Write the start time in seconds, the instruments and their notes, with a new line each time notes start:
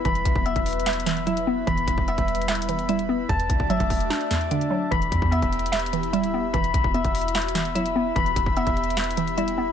Already playing: analog synth pad B3 B4
0.05 808-style bass E1, synth pluck E3, analog synth pad F#3 E4, synth keys B5, kick, closed hi-hat
0.15 closed hi-hat
0.25 808-style bass B1, kick, closed hi-hat
0.36 808-style bass E1, kick
0.46 synth pluck B3, synth keys E5, closed hi-hat
0.56 808-style bass E1, kick, closed hi-hat
0.66 closed hi-hat, open hi-hat
0.73 closed hi-hat
0.80 closed hi-hat
0.86 synth pluck E5, snare, clap, closed hi-hat
0.93 closed hi-hat
1.00 closed hi-hat
1.06 synth pluck E3, snare, clap, closed hi-hat
1.17 closed hi-hat
1.27 synth pluck F#3, synth keys E4, closed hi-hat
1.37 closed hi-hat
1.47 synth pluck B3
1.67 808-style bass E1, synth pluck E3, analog synth pad G3 B4, synth keys B5, kick, closed hi-hat
1.77 closed hi-hat
1.88 808-style bass E1, kick, closed hi-hat
1.98 kick
2.08 synth pluck B3, synth keys E5, closed hi-hat
2.18 808-style bass E1, kick, closed hi-hat
2.28 closed hi-hat
2.35 closed hi-hat
2.42 closed hi-hat
2.48 synth pluck E5, snare, clap, closed hi-hat
2.55 closed hi-hat
2.62 closed hi-hat
2.69 synth pluck E3, closed hi-hat
2.79 closed hi-hat
2.89 synth pluck G3, synth keys E4, closed hi-hat
2.99 closed hi-hat
3.09 synth pluck B3
3.29 808-style bass E1, synth pluck E2, analog synth pad A3 D4 F#4 D5, synth keys A5, kick, closed hi-hat
3.40 closed hi-hat
3.50 808-style bass B1, kick, closed hi-hat
3.60 kick
3.70 808-style bass G1, synth pluck F#3, synth keys E5, closed hi-hat
3.80 808-style bass E1, kick, closed hi-hat
3.90 kick, open hi-hat
4.00 closed hi-hat
4.10 synth pluck D4, snare, clap, closed hi-hat
4.21 closed hi-hat
4.31 synth pluck E2, snare, clap, closed hi-hat
4.41 closed hi-hat
4.51 synth pluck D3, synth keys D4, closed hi-hat
4.61 closed hi-hat
4.70 synth pluck F#3
4.91 808-style bass E1, synth pluck E3, analog synth pad B3 E4 G4 E5, synth keys B5, kick, closed hi-hat
5.02 closed hi-hat
5.12 808-style bass E2, kick, closed hi-hat
5.22 808-style bass E2, kick
5.31 synth pluck B3, synth keys E5, closed hi-hat
5.42 808-style bass E1, kick, closed hi-hat
5.53 closed hi-hat
5.59 closed hi-hat
5.66 closed hi-hat
5.72 synth pluck E5, snare, clap, closed hi-hat
5.79 closed hi-hat
5.86 closed hi-hat
5.93 synth pluck E3, closed hi-hat
6.03 closed hi-hat
6.13 synth pluck G3, synth keys E4, closed hi-hat
6.23 808-style bass D1, closed hi-hat
6.34 synth pluck B3
6.39 808-style bass E1
6.54 808-style bass E1, synth pluck E3, analog synth pad B3 F#4, synth keys B5, kick, closed hi-hat
6.64 closed hi-hat
6.74 808-style bass B1, kick, closed hi-hat
6.84 808-style bass E1, kick
6.94 synth pluck B3, synth keys E5, closed hi-hat
7.05 808-style bass E1, kick, closed hi-hat
7.15 closed hi-hat, open hi-hat
7.21 closed hi-hat
7.28 closed hi-hat
7.35 synth pluck E5, snare, clap, closed hi-hat
7.42 closed hi-hat
7.48 closed hi-hat
7.55 synth pluck E3, snare, clap, closed hi-hat
7.65 closed hi-hat
7.75 synth pluck F#3, synth keys E4, closed hi-hat
7.86 closed hi-hat
7.96 synth pluck B3
8.16 808-style bass E1, synth pluck E3, analog synth pad E4 G4, synth keys B5, kick, closed hi-hat
8.26 closed hi-hat
8.36 808-style bass E1, kick, closed hi-hat
8.46 kick
8.57 synth pluck B3, synth keys E5, closed hi-hat
8.67 808-style bass E1, kick, closed hi-hat
8.77 closed hi-hat
8.84 closed hi-hat
8.90 closed hi-hat
8.97 synth pluck E5, snare, clap, closed hi-hat
9.04 closed hi-hat
9.11 closed hi-hat
9.17 synth pluck E3, closed hi-hat
9.27 closed hi-hat
9.37 synth pluck G3, synth keys E4, closed hi-hat
9.48 closed hi-hat
9.58 synth pluck B3